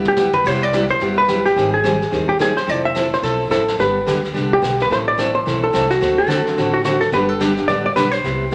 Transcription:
Already playing: D2
0.05 G4, mid tom
0.16 G3 B3 E4 G4, hi-hat pedal, mid tom
0.33 B4, floor tom
0.44 C2 C3 G3 B3 E4 G4 C5, brush sweep, kick, snare, crash
0.63 D5
0.73 C3 G3 B3 E4 G4, snare, hi-hat pedal
0.88 C5, snare
1.00 G1 C3 G3 B3 E4 G4, brush sweep, snare
1.18 B4
1.28 C3 G3 B3 E4 G4, snare, hi-hat pedal
1.45 G4, snare
1.56 G#1 D#3 G3 C4 D#4 G#4, brush sweep, snare
1.74 G#4
1.83 D#3 G3 C4 D#4 G#4, snare, hi-hat pedal
2.02 snare
2.11 D#2 D#3 G3 C4 D#4 G#4, brush sweep, snare
2.29 G4
2.39 D#3 G3 C4 D#4 G#4, snare, hi-hat pedal
2.57 C5, snare
2.67 F1 F3 C4 E4 A4 D5, brush sweep, snare
2.85 E5
2.95 F3 C4 E4 A4, snare, hi-hat pedal
3.13 C5, snare
3.22 B1 F3 C4 E4 A4, brush sweep, snare
3.50 A1 F3 C4 E4 A4, snare, hi-hat pedal
3.68 snare
3.79 G1 D3 G3 B3 D4 G4 B4, brush sweep, snare
4.06 D2 D3 G3 B3 D4 G4, snare, hi-hat pedal
4.24 snare
4.33 C2 D3 G3 B3 D4 G4, brush sweep, snare
4.53 G4
4.62 B1 D3 G3 B3 D4 G4, snare, hi-hat pedal
4.80 B4, snare
4.90 A1 E3 A3 C4 E4 A4 C5, brush sweep, snare
5.08 D5
5.18 E3 A3 C4 E4 A4, snare, hi-hat pedal
5.35 C5
5.46 B1 E3 A3 C4 E4 A4, brush sweep, snare
5.64 A4
5.73 C2 E3 A3 C4 E4 A4, snare, hi-hat pedal
5.90 F#4, snare
6.00 D2 D3 A3 C4 F#4 A4, brush sweep, snare
6.18 A4
6.27 D3 A3 C4 F#4 A4, snare, hi-hat pedal
6.45 F#3 A3 C4 D4 F#4, snare
6.57 A1 D3 A3 C4 F#4 A4, brush sweep, snare
6.74 F#4
6.84 D3 A3 C4 F#4 A4, snare, hi-hat pedal
7.01 A4, snare
7.12 G1 D3 G3 B3 D4 G4 B4, brush sweep, snare
7.29 A4
7.40 D3 G3 B3 D4 G4, snare, hi-hat pedal
7.57 D3 G3 B3 D4 G4, snare
7.68 A1 D3 G3 B3 D4 G4 D5, brush sweep, snare
7.86 D5
7.96 B1 D3 G3 B3 D4 G4 B4, snare, hi-hat pedal
8.12 C5, snare
8.24 C2 C3 G3 B3 E4 G4, brush sweep, snare
8.51 C3

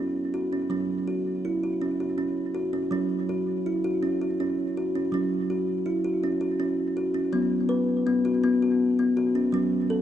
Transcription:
Already playing: F#3 C#4
0.34 F#4
0.53 C#4
0.70 F#3 C#4
1.07 F#4
1.45 E4
1.63 F#4
1.82 C#4
2.00 F#4
2.18 C#4
2.55 F#4
2.73 C#4
2.91 F#3 C#4
3.29 F#4
3.66 E4
3.84 F#4
4.03 C#4
4.21 F#4
4.40 C#4
4.77 F#4
4.95 C#4
5.12 F#3 C#4
5.50 F#4
5.86 E4
6.04 F#4
6.23 C#4
6.41 F#4
6.60 C#4
6.97 F#4
7.14 C#4
7.33 F#3 B3
7.69 B4
8.07 B3
8.25 F#4
8.44 B3
8.62 F#4
8.99 B3
9.17 F#4
9.35 C#4
9.52 F#3 C#4
9.90 A4

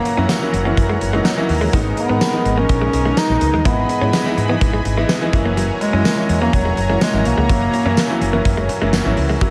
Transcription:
Already playing: E3 F#3 A#3 C#4 E4 F#4 C#5 F#5 A#5
0.05 muted clean electric guitar stroke, closed hi-hat
0.17 F#2 E3 F#3 A#3 C#4 E4
0.29 A#3, snare, closed hi-hat, tambourine
0.41 E3 F#3 A#3 C#4 E4
0.53 F#1, muted clean electric guitar stroke, closed hi-hat
0.65 E3 F#3 A#3 C#4 E4
0.77 F#2, kick, closed hi-hat
0.90 G#3
1.01 F#1, muted clean electric guitar stroke, closed hi-hat
1.13 E3 F#3 G#3 A#3 C#4 D#4
1.25 A#3, snare, closed hi-hat, tambourine
1.37 E3 F#3 A#3 C#4 E4
1.49 D#2, muted clean electric guitar stroke, open hi-hat
1.61 G#3
1.73 G#1 D#3 G#3 A#3 B3 D#4 G#4 A#4 D#5, kick, closed hi-hat
1.97 B3, muted clean electric guitar stroke, closed hi-hat
2.09 G#2 D#3 G#3 A#3 B3 D#4
2.21 A#3, snare, closed hi-hat, tambourine
2.33 D#3 G#3 A#3 B3 D#4
2.45 G#1, muted clean electric guitar stroke, closed hi-hat
2.57 D#3 G#3 A#3 B3 C#4 D#4
2.69 A#1, kick, closed hi-hat
2.81 G#3
2.93 B1, muted clean electric guitar stroke, closed hi-hat
3.05 D#3 G#3 A#3 B3 D#4
3.17 A#3 D#4, snare, closed hi-hat, tambourine
3.29 A#1 D#3 G#3 A#3 B3 D#4
3.41 C#2, muted clean electric guitar stroke, closed hi-hat
3.53 D#2 G#3
3.65 G#1 E3 G#3 B3 D#4 E4 G#5 B5, kick, closed hi-hat
3.89 muted clean electric guitar stroke, closed hi-hat
4.01 G#2 E3 G#3 B3 C#4 D#4 E4
4.13 B3, snare, closed hi-hat, tambourine
4.25 E3 G#3 B3 D#4 E4
4.37 G#2, muted clean electric guitar stroke, closed hi-hat
4.49 E3 G#3 B3 D#4 E4
4.61 G#1, kick, closed hi-hat
4.73 G#3
4.85 G#1, muted clean electric guitar stroke, closed hi-hat
4.97 E3 G#3 B3 D#4 E4
5.09 B3, snare, closed hi-hat, tambourine
5.21 E3 G#3 B3 D#4 E4
5.33 F#1 E3 F#3 A#3 C#4 E4 F#4 C#5 A#5, muted clean electric guitar stroke, kick, closed hi-hat
5.45 A#3
5.57 F#3, closed hi-hat
5.81 G#3, muted clean electric guitar stroke, closed hi-hat
5.93 F#2 E3 F#3 A#3 C#4 E4
6.05 A#3, snare, closed hi-hat, tambourine
6.17 E3 F#3 A#3 C#4 E4
6.29 E2, muted clean electric guitar stroke, closed hi-hat
6.41 E3 F#3 A#3 C#4 E4
6.53 E1 F#3, kick, closed hi-hat
6.65 G#3
6.77 F#1, muted clean electric guitar stroke, closed hi-hat
6.89 E3 F#3 G#3 A#3 C#4 E4
7.01 G#3 A#3, snare, closed hi-hat, tambourine
7.13 G#1 E3 F#3 A#3 C#4 E4
7.25 B1 A#3, muted clean electric guitar stroke, closed hi-hat
7.37 C#2 G#3
7.49 F#1 E3 F#3 A#3 C#4 E4, kick, closed hi-hat
7.74 muted clean electric guitar stroke, closed hi-hat
7.85 F#2 E3 F#3 A#3 C#4 E4
7.97 A#3, snare, closed hi-hat, tambourine
8.09 E3 F#3 A#3 C#4 E4
8.21 F#1, muted clean electric guitar stroke, closed hi-hat
8.32 E3 F#3 A#3 C#4 E4
8.45 F#2, kick, closed hi-hat
8.57 F#1 G#3
8.69 muted clean electric guitar stroke, closed hi-hat
8.81 F#1 E3 F#3 G#3 A#3 C#4 E4
8.93 A#3, snare, closed hi-hat, tambourine
9.04 G#1 E3 F#3 A#3 C#4 E4
9.17 C#2, muted clean electric guitar stroke, open hi-hat
9.29 G#3
9.41 F#1 F#3 A#3 C#4 E4 F#4 C#5 E5 A#5, kick, closed hi-hat

